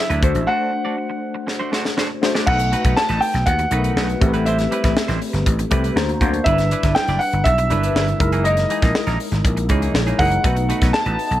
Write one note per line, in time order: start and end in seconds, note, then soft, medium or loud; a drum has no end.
0.00 0.24 F#3 medium
0.00 0.23 D4 medium
0.00 0.24 E4 medium
0.00 0.24 B4 medium
0.00 0.43 E5 medium
0.10 0.19 D2 medium
0.10 0.22 F#3 medium
0.10 0.22 D4 medium
0.10 0.23 E4 medium
0.10 0.23 B4 medium
0.10 closed hi-hat soft
0.22 0.31 D2 medium
0.22 0.33 A3 medium
0.22 1.02 A3 medium
0.22 1.02 D4 medium
0.22 0.33 D4 medium
0.22 1.03 F#4 medium
0.22 0.33 F#4 medium
0.22 1.03 C5 medium
0.22 0.33 C5 medium
0.22 kick medium
0.22 closed hi-hat medium
0.35 0.44 A1 medium
0.35 muted clean electric guitar stroke medium
0.35 closed hi-hat soft
0.47 0.70 A3 medium
0.47 0.71 D4 medium
0.47 0.71 F#4 medium
0.47 0.71 C5 medium
0.47 1.93 F#5 medium
0.72 muted clean electric guitar stroke soft
0.85 0.96 A3 soft
0.85 0.96 D4 soft
0.85 0.96 F#4 soft
0.85 0.95 D5 soft
0.97 muted clean electric guitar stroke soft
1.10 muted clean electric guitar stroke soft
1.35 muted clean electric guitar stroke soft
1.47 muted clean electric guitar stroke soft
1.47 snare soft
1.59 1.71 A3 soft
1.59 1.71 D4 soft
1.59 1.70 F#4 medium
1.59 1.70 C5 medium
1.72 1.85 A3 medium
1.72 1.85 D4 medium
1.72 1.84 F#4 medium
1.72 1.84 C5 medium
1.72 snare medium
1.85 muted clean electric guitar stroke soft
1.85 snare medium
1.97 2.10 A3 medium
1.97 2.10 D4 medium
1.97 2.09 F#4 medium
1.97 2.08 C5 medium
1.97 snare medium
2.10 muted clean electric guitar stroke soft
2.22 2.41 A3 medium
2.22 2.42 D4 medium
2.22 2.42 F#4 medium
2.22 2.42 C5 medium
2.22 muted clean electric guitar stroke soft
2.22 snare medium
2.35 2.46 A3 medium
2.35 2.46 D4 medium
2.35 2.45 F#4 medium
2.35 2.45 D5 medium
2.35 snare medium
2.46 2.74 B1 medium
2.46 3.25 A3 medium
2.46 2.60 A3 medium
2.46 2.60 D#4 medium
2.46 2.59 F#4 medium
2.46 3.25 B4 medium
2.46 2.58 B4 medium
2.46 2.98 F#5 medium
2.46 kick loud
2.46 crash medium
2.59 muted clean electric guitar stroke soft
2.59 closed hi-hat medium
2.72 2.82 A3 medium
2.72 2.83 D#4 medium
2.72 2.83 F#4 medium
2.72 2.83 B4 medium
2.72 closed hi-hat medium
2.84 2.93 B1 medium
2.84 2.96 A3 soft
2.84 2.95 D#4 medium
2.84 2.95 F#4 medium
2.84 2.95 B4 medium
2.84 kick medium
2.84 closed hi-hat soft
2.97 3.22 A5 loud
2.97 muted clean electric guitar stroke soft
2.97 snare loud
3.09 3.18 A1 medium
3.09 3.21 A3 medium
3.09 3.21 D#4 medium
3.09 3.21 F#4 medium
3.09 3.22 B4 medium
3.09 snare soft
3.09 closed hi-hat soft
3.21 3.47 G5 medium
3.21 muted clean electric guitar stroke soft
3.21 open hi-hat medium
3.34 3.43 B1 medium
3.34 muted clean electric guitar stroke medium
3.34 snare soft
3.34 closed hi-hat soft
3.46 3.64 D#2 medium
3.46 4.42 F#5 medium
3.46 muted clean electric guitar stroke soft
3.46 kick medium
3.46 closed hi-hat medium
3.59 muted clean electric guitar stroke soft
3.59 closed hi-hat medium
3.71 3.89 B1 medium
3.71 4.10 A3 medium
3.71 3.84 A3 medium
3.71 4.10 D#4 medium
3.71 3.84 D#4 medium
3.71 4.11 F#4 medium
3.71 3.83 F#4 medium
3.71 3.78 A#4 medium
3.71 3.83 B4 loud
3.71 closed hi-hat medium
3.78 4.14 B4 medium
3.84 3.95 A3 soft
3.84 3.95 D#4 medium
3.84 3.95 F#4 medium
3.84 3.94 B4 medium
3.84 closed hi-hat medium
3.96 4.14 B1 medium
3.96 4.10 A3 medium
3.96 4.09 D#4 medium
3.96 4.09 F#4 medium
3.96 4.08 B4 medium
3.96 snare loud
4.09 muted clean electric guitar stroke soft
4.09 closed hi-hat soft
4.21 4.65 A1 loud
4.21 5.01 A3 medium
4.21 5.01 C4 medium
4.21 5.01 G4 medium
4.21 4.28 A#4 medium
4.21 muted clean electric guitar stroke soft
4.21 kick medium
4.21 closed hi-hat medium
4.28 5.04 B4 loud
4.34 4.45 G3 medium
4.34 4.45 C4 medium
4.34 4.45 E4 medium
4.34 4.44 B4 medium
4.34 closed hi-hat soft
4.45 4.60 G3 medium
4.45 4.59 C4 medium
4.45 4.58 E4 medium
4.45 4.58 C5 medium
4.45 5.17 E5 medium
4.45 closed hi-hat medium
4.59 muted clean electric guitar stroke soft
4.59 snare soft
4.59 closed hi-hat medium
4.71 4.82 G3 medium
4.71 4.82 C4 medium
4.71 4.82 E4 medium
4.71 4.83 B4 medium
4.71 closed hi-hat medium
4.84 4.93 A1 medium
4.84 4.95 G3 medium
4.84 4.95 C4 medium
4.84 4.95 E4 medium
4.84 4.94 B4 medium
4.84 kick medium
4.84 snare soft
4.84 closed hi-hat medium
4.97 snare loud
5.08 5.18 A1 medium
5.08 5.20 G3 medium
5.08 5.20 C4 medium
5.08 5.21 E4 medium
5.08 5.22 C5 medium
5.08 snare soft
5.08 closed hi-hat soft
5.22 open hi-hat medium
5.33 5.42 G1 medium
5.33 muted clean electric guitar stroke soft
5.33 snare soft
5.33 closed hi-hat soft
5.46 5.64 A1 medium
5.46 muted clean electric guitar stroke soft
5.46 kick medium
5.46 closed hi-hat medium
5.59 muted clean electric guitar stroke soft
5.59 closed hi-hat medium
5.70 5.89 C2 medium
5.70 5.84 G3 medium
5.70 5.96 A3 medium
5.70 5.96 C4 medium
5.70 5.84 C4 medium
5.70 5.83 E4 medium
5.70 5.96 G4 medium
5.70 5.96 B4 medium
5.70 5.83 B4 medium
5.70 kick medium
5.70 closed hi-hat medium
5.84 5.95 G3 soft
5.84 5.95 C4 soft
5.84 5.94 E4 medium
5.84 5.94 B4 medium
5.84 closed hi-hat medium
5.95 6.13 D2 medium
5.95 6.16 A#3 medium
5.95 6.16 D4 medium
5.95 6.16 F#4 medium
5.95 6.16 C5 loud
5.95 6.19 A#5 medium
5.95 muted clean electric guitar stroke soft
5.95 snare loud
6.09 muted clean electric guitar stroke soft
6.09 closed hi-hat soft
6.21 6.39 D2 medium
6.21 6.35 F#3 medium
6.21 6.40 A#3 medium
6.21 6.34 C4 medium
6.21 6.40 D4 medium
6.21 6.34 F4 medium
6.21 6.41 F#4 medium
6.21 6.33 A#4 medium
6.21 6.41 C5 medium
6.21 6.44 F#5 medium
6.21 kick medium
6.21 closed hi-hat medium
6.34 muted clean electric guitar stroke soft
6.34 closed hi-hat soft
6.44 6.72 G1 loud
6.44 7.23 G3 medium
6.44 6.59 G3 medium
6.44 7.24 D4 medium
6.44 6.59 D4 medium
6.44 7.24 E4 medium
6.44 6.59 E4 medium
6.44 7.24 B4 medium
6.44 6.91 E5 medium
6.44 kick loud
6.44 closed hi-hat medium
6.48 6.58 B4 medium
6.58 muted clean electric guitar stroke soft
6.58 snare soft
6.58 closed hi-hat medium
6.71 6.82 G3 medium
6.71 6.82 D4 medium
6.71 6.82 E4 medium
6.71 6.82 B4 medium
6.71 closed hi-hat medium
6.83 6.92 G1 medium
6.83 6.95 G3 medium
6.83 6.95 D4 medium
6.83 6.94 E4 medium
6.83 6.94 B4 medium
6.83 kick medium
6.83 snare soft
6.83 closed hi-hat soft
6.95 7.18 G5 loud
6.95 snare loud
7.08 7.17 F#1 medium
7.08 7.20 G3 medium
7.08 7.21 D4 medium
7.08 7.21 E4 medium
7.08 7.22 D5 medium
7.08 snare soft
7.08 closed hi-hat soft
7.19 7.46 F#5 medium
7.19 muted clean electric guitar stroke soft
7.19 open hi-hat medium
7.33 7.42 G1 medium
7.33 muted clean electric guitar stroke soft
7.33 closed hi-hat soft
7.44 7.72 B1 medium
7.44 8.40 E5 loud
7.44 muted clean electric guitar stroke soft
7.44 kick medium
7.44 closed hi-hat medium
7.58 muted clean electric guitar stroke soft
7.58 closed hi-hat medium
7.70 7.88 G1 medium
7.70 8.09 G3 medium
7.70 7.83 G3 medium
7.70 8.09 D4 medium
7.70 7.83 D4 medium
7.70 8.09 E4 medium
7.70 7.82 E4 medium
7.70 7.77 A#4 medium
7.70 7.81 B4 loud
7.70 closed hi-hat medium
7.77 8.13 B4 medium
7.83 7.94 G3 soft
7.83 7.94 D4 medium
7.83 7.94 E4 medium
7.83 7.93 B4 medium
7.83 closed hi-hat medium
7.95 8.13 G1 medium
7.95 8.09 G3 medium
7.95 8.08 D4 medium
7.95 8.07 E4 medium
7.95 8.07 B4 medium
7.95 snare loud
8.08 muted clean electric guitar stroke soft
8.08 closed hi-hat soft
8.19 8.64 F#1 loud
8.19 9.00 G#3 medium
8.19 9.00 D#4 medium
8.19 9.00 E4 medium
8.19 9.00 A#4 loud
8.19 muted clean electric guitar stroke soft
8.19 kick loud
8.19 closed hi-hat medium
8.32 8.44 E3 medium
8.32 8.44 A#3 medium
8.32 8.43 D#4 medium
8.32 8.43 G#4 medium
8.32 closed hi-hat medium
8.44 8.58 E3 medium
8.44 8.58 A#3 medium
8.44 8.57 D#4 medium
8.44 8.57 A#4 medium
8.44 9.15 D#5 medium
8.44 closed hi-hat medium
8.57 muted clean electric guitar stroke soft
8.57 snare soft
8.57 closed hi-hat medium
8.70 8.80 E3 medium
8.70 8.81 A#3 medium
8.70 8.81 D#4 medium
8.70 8.81 G#4 medium
8.70 closed hi-hat medium
8.82 8.91 A#1 medium
8.82 8.94 E3 medium
8.82 8.93 A#3 medium
8.82 8.93 D#4 medium
8.82 8.93 G#4 medium
8.82 kick medium
8.82 snare soft
8.82 closed hi-hat medium
8.95 snare loud
9.07 9.16 A#1 medium
9.07 9.18 E3 medium
9.07 9.19 A#3 medium
9.07 9.19 D#4 medium
9.07 9.20 A#4 medium
9.07 snare soft
9.07 closed hi-hat soft
9.19 muted clean electric guitar stroke soft
9.19 open hi-hat medium
9.32 9.41 G#1 medium
9.32 muted clean electric guitar stroke soft
9.32 snare soft
9.32 closed hi-hat soft
9.44 9.70 A#1 medium
9.44 muted clean electric guitar stroke soft
9.44 kick medium
9.44 closed hi-hat medium
9.57 muted clean electric guitar stroke soft
9.57 closed hi-hat medium
9.69 9.87 C#2 medium
9.69 9.82 E3 medium
9.69 10.08 G#3 medium
9.69 9.82 A#3 medium
9.69 10.09 D#4 medium
9.69 9.81 D#4 medium
9.69 10.09 E4 medium
9.69 9.81 G#4 medium
9.69 10.09 C#5 medium
9.69 kick medium
9.69 closed hi-hat medium
9.82 9.93 E3 soft
9.82 9.93 A#3 medium
9.82 9.93 D#4 medium
9.82 9.93 G#4 medium
9.82 closed hi-hat medium
9.94 10.12 A#1 medium
9.94 snare loud
10.07 10.18 E3 medium
10.07 10.18 A#3 medium
10.07 10.18 D#4 medium
10.07 10.17 G#4 medium
10.07 closed hi-hat soft
10.19 10.37 F#1 medium
10.19 10.33 E3 medium
10.19 10.39 G#3 medium
10.19 10.32 A#3 medium
10.19 10.39 D#4 medium
10.19 10.31 D#4 medium
10.19 10.39 E4 medium
10.19 10.30 G#4 medium
10.19 10.39 A#4 medium
10.19 10.90 F#5 medium
10.19 kick medium
10.19 open hi-hat medium
10.31 muted clean electric guitar stroke soft
10.31 closed hi-hat soft
10.44 10.71 B1 medium
10.44 11.22 A3 medium
10.44 10.58 A3 medium
10.44 11.40 A3 medium
10.44 11.40 B3 medium
10.44 11.40 D#4 medium
10.44 11.22 D#4 medium
10.44 10.57 D#4 medium
10.44 11.22 F#4 medium
10.44 10.56 F#4 medium
10.44 11.23 B4 medium
10.44 10.55 B4 medium
10.44 kick loud
10.44 closed hi-hat medium
10.56 muted clean electric guitar stroke soft
10.56 closed hi-hat medium
10.69 10.80 A3 medium
10.69 10.80 D#4 medium
10.69 10.80 F#4 medium
10.69 10.80 B4 medium
10.69 closed hi-hat medium
10.81 10.90 B1 medium
10.81 10.93 A3 medium
10.81 10.93 D#4 medium
10.81 10.92 F#4 medium
10.81 10.92 B4 medium
10.81 kick medium
10.81 snare soft
10.81 closed hi-hat soft
10.93 11.40 A5 medium
10.93 snare loud
11.06 11.15 A1 medium
11.06 11.18 A3 medium
11.06 11.18 D#4 medium
11.06 11.18 F#4 medium
11.06 11.19 B4 medium
11.06 closed hi-hat soft
11.19 muted clean electric guitar stroke soft
11.19 open hi-hat medium
11.31 11.40 B1 medium
11.31 muted clean electric guitar stroke soft
11.31 closed hi-hat soft